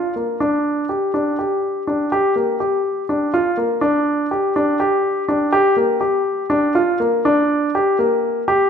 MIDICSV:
0, 0, Header, 1, 2, 480
1, 0, Start_track
1, 0, Key_signature, -2, "minor"
1, 0, Tempo, 489396
1, 394, Time_signature, 7, 3, 24, 8
1, 8530, End_track
2, 0, Start_track
2, 0, Title_t, "Grand piano"
2, 0, Program_c, 0, 0
2, 0, Note_on_c, 0, 65, 60
2, 126, Note_off_c, 0, 65, 0
2, 155, Note_on_c, 0, 58, 54
2, 368, Note_off_c, 0, 58, 0
2, 396, Note_on_c, 0, 62, 69
2, 823, Note_off_c, 0, 62, 0
2, 875, Note_on_c, 0, 67, 54
2, 1089, Note_off_c, 0, 67, 0
2, 1118, Note_on_c, 0, 62, 57
2, 1331, Note_off_c, 0, 62, 0
2, 1361, Note_on_c, 0, 67, 62
2, 1786, Note_off_c, 0, 67, 0
2, 1838, Note_on_c, 0, 62, 60
2, 2051, Note_off_c, 0, 62, 0
2, 2080, Note_on_c, 0, 67, 75
2, 2291, Note_off_c, 0, 67, 0
2, 2312, Note_on_c, 0, 58, 59
2, 2527, Note_off_c, 0, 58, 0
2, 2552, Note_on_c, 0, 67, 57
2, 2979, Note_off_c, 0, 67, 0
2, 3032, Note_on_c, 0, 62, 63
2, 3246, Note_off_c, 0, 62, 0
2, 3272, Note_on_c, 0, 65, 74
2, 3485, Note_off_c, 0, 65, 0
2, 3505, Note_on_c, 0, 58, 64
2, 3722, Note_off_c, 0, 58, 0
2, 3740, Note_on_c, 0, 62, 73
2, 4173, Note_off_c, 0, 62, 0
2, 4230, Note_on_c, 0, 67, 63
2, 4444, Note_off_c, 0, 67, 0
2, 4472, Note_on_c, 0, 62, 70
2, 4685, Note_off_c, 0, 62, 0
2, 4706, Note_on_c, 0, 67, 69
2, 5132, Note_off_c, 0, 67, 0
2, 5183, Note_on_c, 0, 62, 69
2, 5397, Note_off_c, 0, 62, 0
2, 5419, Note_on_c, 0, 67, 81
2, 5634, Note_off_c, 0, 67, 0
2, 5655, Note_on_c, 0, 58, 68
2, 5872, Note_off_c, 0, 58, 0
2, 5891, Note_on_c, 0, 67, 62
2, 6323, Note_off_c, 0, 67, 0
2, 6373, Note_on_c, 0, 62, 76
2, 6593, Note_off_c, 0, 62, 0
2, 6621, Note_on_c, 0, 65, 75
2, 6840, Note_off_c, 0, 65, 0
2, 6864, Note_on_c, 0, 58, 70
2, 7084, Note_off_c, 0, 58, 0
2, 7112, Note_on_c, 0, 62, 82
2, 7543, Note_off_c, 0, 62, 0
2, 7600, Note_on_c, 0, 67, 69
2, 7812, Note_off_c, 0, 67, 0
2, 7834, Note_on_c, 0, 58, 73
2, 8258, Note_off_c, 0, 58, 0
2, 8316, Note_on_c, 0, 67, 78
2, 8524, Note_off_c, 0, 67, 0
2, 8530, End_track
0, 0, End_of_file